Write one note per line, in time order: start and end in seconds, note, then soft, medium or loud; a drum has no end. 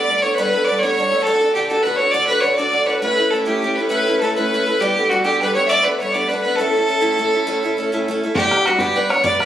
0.00 0.23 D5 loud
0.00 0.25 D5 medium
0.08 0.22 G3 medium
0.08 0.23 B3 medium
0.08 0.23 D4 soft
0.08 0.22 A4 medium
0.21 0.38 B3 soft
0.21 0.37 A4 soft
0.21 0.36 C#5 medium
0.21 0.39 C#5 medium
0.26 0.37 D4 soft
0.34 0.53 G3 medium
0.34 0.53 D4 medium
0.34 0.66 B4 medium
0.34 0.69 B4 medium
0.39 0.54 B3 medium
0.39 0.53 A4 medium
0.54 0.68 B3 soft
0.54 0.68 D4 soft
0.54 0.67 A4 medium
0.65 0.82 G3 medium
0.65 0.80 D5 medium
0.65 0.83 D5 medium
0.69 0.82 B3 medium
0.69 0.82 D4 soft
0.69 0.82 A4 medium
0.78 1.23 C#5 medium
0.78 1.24 C#5 medium
0.83 0.96 G3 soft
0.83 0.98 B3 medium
0.83 0.98 D4 medium
0.83 0.98 A4 medium
0.98 1.12 G3 medium
0.98 1.13 B3 medium
0.98 1.12 D4 soft
0.98 1.10 A4 medium
1.12 1.27 B3 soft
1.12 1.26 D4 soft
1.12 1.26 A4 medium
1.22 1.54 A4 loud
1.22 1.56 A4 medium
1.27 1.42 D3 medium
1.27 1.42 D4 medium
1.27 1.42 F#4 medium
1.27 1.40 A4 medium
1.41 1.55 D4 soft
1.41 1.56 F#4 soft
1.41 1.55 A4 medium
1.54 1.69 D3 medium
1.54 1.70 D4 medium
1.54 1.69 F#4 medium
1.54 1.65 G4 medium
1.54 1.70 G4 medium
1.58 1.69 A4 medium
1.66 1.84 A4 medium
1.66 1.86 A4 medium
1.71 1.84 D3 soft
1.71 1.85 D4 medium
1.71 1.86 F#4 medium
1.82 2.00 D3 medium
1.82 2.00 D4 medium
1.82 1.97 B4 medium
1.82 1.99 B4 medium
1.87 2.00 F#4 medium
1.87 1.98 A4 medium
1.96 2.14 A4 medium
1.96 2.12 C#5 medium
1.96 2.17 C#5 medium
2.01 2.13 D4 soft
2.01 2.13 F#4 soft
2.11 2.30 D3 medium
2.11 2.29 D4 medium
2.11 2.28 F#4 medium
2.11 2.26 D5 loud
2.15 2.27 A4 medium
2.15 2.30 D5 medium
2.27 2.43 D4 soft
2.27 2.44 F#4 medium
2.27 2.43 A4 medium
2.27 2.41 B4 medium
2.27 2.44 B4 medium
2.40 2.58 D3 medium
2.40 2.55 C#5 medium
2.40 2.57 C#5 medium
2.40 2.42 D5 medium
2.44 2.58 D4 medium
2.44 2.57 F#4 medium
2.44 2.57 A4 medium
2.55 2.72 D4 medium
2.55 2.73 F#4 medium
2.55 2.73 A4 medium
2.55 2.87 D5 medium
2.55 2.86 D5 medium
2.60 2.71 D3 soft
2.72 2.87 D3 soft
2.72 2.88 D4 medium
2.72 2.87 F#4 medium
2.72 2.85 A4 medium
2.86 3.02 D4 soft
2.86 3.02 F#4 soft
2.86 3.02 A4 soft
2.86 3.00 B4 medium
2.86 2.88 C#5 medium
3.01 3.18 A2 medium
3.01 3.18 A3 medium
3.01 3.19 C#4 medium
3.01 3.18 E4 medium
3.01 3.16 A4 medium
3.01 3.32 B4 loud
3.01 3.33 B4 medium
3.18 3.33 C#4 soft
3.18 3.33 E4 soft
3.18 3.32 A4 medium
3.30 3.46 A3 medium
3.30 3.44 A4 medium
3.30 3.49 A4 medium
3.34 3.45 C#4 medium
3.34 3.45 E4 medium
3.34 3.44 A4 medium
3.45 3.64 A2 medium
3.45 3.61 A3 medium
3.45 3.63 C#4 medium
3.45 3.62 E4 medium
3.45 3.76 G4 medium
3.45 3.78 G4 medium
3.45 3.62 A4 medium
3.62 3.77 A3 soft
3.62 3.78 C#4 medium
3.62 3.78 E4 medium
3.62 3.77 A4 medium
3.75 3.91 A4 soft
3.75 3.88 B4 medium
3.75 3.91 B4 medium
3.79 3.89 C#4 soft
3.79 3.90 E4 soft
3.89 4.06 A2 medium
3.89 4.07 A3 medium
3.89 4.07 C#4 medium
3.89 4.07 E4 medium
3.89 4.05 A4 medium
3.89 4.18 B4 medium
3.89 4.22 B4 medium
4.07 4.22 C#4 soft
4.07 4.22 E4 soft
4.07 4.21 A4 medium
4.20 4.36 A3 medium
4.20 4.37 C#4 medium
4.20 4.36 E4 medium
4.20 4.34 A4 medium
4.20 4.38 A4 medium
4.25 4.35 A4 medium
4.35 4.53 A2 medium
4.35 4.52 A3 medium
4.35 4.53 C#4 medium
4.35 4.52 E4 medium
4.35 4.52 A4 medium
4.35 4.82 B4 medium
4.35 4.81 B4 medium
4.53 4.67 A3 soft
4.53 4.67 C#4 medium
4.53 4.67 E4 medium
4.53 4.65 A4 medium
4.66 4.81 C#4 soft
4.66 4.81 E4 soft
4.66 4.80 A4 medium
4.80 4.96 G3 medium
4.80 4.97 B3 medium
4.80 4.97 D4 medium
4.80 4.96 G4 medium
4.80 5.11 G4 medium
4.80 4.97 A4 medium
4.97 5.11 B3 soft
4.97 5.10 D4 soft
4.97 5.12 G4 medium
4.97 5.11 A4 medium
5.09 5.25 G3 medium
5.09 5.24 B3 medium
5.09 5.24 D4 medium
5.09 5.23 F#4 medium
5.09 5.28 F#4 medium
5.09 5.23 A4 medium
5.23 5.40 G3 soft
5.23 5.41 B3 medium
5.23 5.41 D4 medium
5.23 5.39 G4 medium
5.23 5.57 G4 medium
5.23 5.40 A4 medium
5.41 5.55 G3 medium
5.41 5.55 B3 medium
5.41 5.56 D4 soft
5.41 5.54 A4 medium
5.41 5.54 B4 medium
5.55 5.69 B3 soft
5.55 5.68 D4 soft
5.55 5.69 A4 medium
5.55 5.64 C#5 medium
5.55 5.68 C#5 medium
5.67 5.85 G3 medium
5.67 5.85 D4 medium
5.67 5.86 D5 loud
5.67 5.84 D5 medium
5.67 5.70 E5 medium
5.71 5.85 B3 medium
5.71 5.84 A4 medium
5.82 5.99 A4 medium
5.82 5.99 B4 medium
5.87 6.00 B3 medium
5.87 6.00 D4 soft
5.98 6.14 G3 medium
5.98 6.14 D4 soft
5.98 6.12 C#5 medium
5.98 6.15 C#5 medium
6.02 6.13 B3 medium
6.02 6.13 A4 medium
6.11 6.30 B3 medium
6.11 6.30 A4 medium
6.11 6.29 D5 medium
6.11 6.30 D5 medium
6.15 6.28 G3 medium
6.15 6.29 D4 medium
6.28 6.44 G3 medium
6.28 6.45 B3 medium
6.28 6.44 D4 medium
6.28 6.58 B4 medium
6.28 6.41 B4 medium
6.34 6.43 A4 medium
6.41 6.58 A4 soft
6.41 6.57 B4 medium
6.46 6.59 B3 soft
6.46 6.59 D4 soft
6.56 6.74 A2 medium
6.56 6.74 A3 medium
6.56 8.06 A4 loud
6.56 8.07 A4 medium
6.60 6.75 C#4 medium
6.60 6.75 E4 medium
6.60 6.73 A4 medium
6.74 6.88 C#4 soft
6.74 6.88 E4 soft
6.74 6.88 A4 soft
6.88 7.01 A3 medium
6.88 7.01 C#4 medium
6.88 7.00 E4 medium
6.88 7.00 A4 medium
7.01 7.18 A2 medium
7.01 7.16 A3 medium
7.01 7.18 C#4 medium
7.01 7.18 E4 medium
7.01 7.17 A4 medium
7.18 7.32 A3 medium
7.18 7.33 C#4 medium
7.18 7.33 E4 medium
7.18 7.32 A4 medium
7.33 7.47 C#4 soft
7.33 7.47 E4 soft
7.33 7.47 A4 medium
7.47 7.63 A2 medium
7.47 7.63 A3 medium
7.47 7.63 C#4 medium
7.47 7.63 E4 medium
7.47 7.62 A4 medium
7.63 7.77 C#4 medium
7.63 7.77 E4 medium
7.63 7.77 A4 medium
7.77 7.91 A3 medium
7.77 7.92 C#4 medium
7.77 7.92 E4 medium
7.77 7.91 A4 medium
7.92 8.09 A2 medium
7.92 8.07 A3 medium
7.92 8.08 C#4 medium
7.92 8.08 E4 medium
7.92 8.08 A4 medium
8.08 8.22 A3 medium
8.08 8.23 C#4 medium
8.08 8.23 E4 medium
8.08 8.22 A4 medium
8.23 8.38 C#4 soft
8.23 8.37 E4 soft
8.23 8.37 A4 medium
8.35 8.52 G3 medium
8.35 8.53 D4 medium
8.35 8.68 G4 loud
8.35 8.77 G4 medium
8.35 bodhran medium
8.39 8.53 B3 medium
8.39 8.51 B4 medium
8.51 8.66 B3 soft
8.51 8.66 B4 soft
8.51 bodhran medium
8.56 8.66 D4 soft
8.66 8.80 G3 medium
8.66 8.79 B3 medium
8.66 8.79 D4 medium
8.66 8.81 F#4 medium
8.66 8.79 B4 medium
8.66 bodhran soft
8.79 8.94 G3 soft
8.79 8.95 B3 medium
8.79 8.95 D4 medium
8.79 8.98 G4 medium
8.79 8.96 G4 medium
8.79 8.96 B4 medium
8.79 bodhran medium
8.95 9.10 G3 medium
8.95 9.11 B3 medium
8.95 9.10 D4 medium
8.95 9.11 B4 medium
8.95 9.09 B4 medium
9.09 9.24 B3 medium
9.09 9.23 D4 soft
9.09 9.23 B4 medium
9.09 9.25 C#5 medium
9.09 9.24 C#5 medium
9.09 bodhran medium
9.23 9.40 G3 medium
9.23 9.40 B3 medium
9.23 9.40 D4 medium
9.23 9.38 B4 medium
9.23 9.40 D5 medium
9.23 9.40 D5 loud
9.23 bodhran medium
9.39 9.45 B3 soft
9.39 9.45 B4 medium
9.39 9.45 B4 loud
9.39 bodhran medium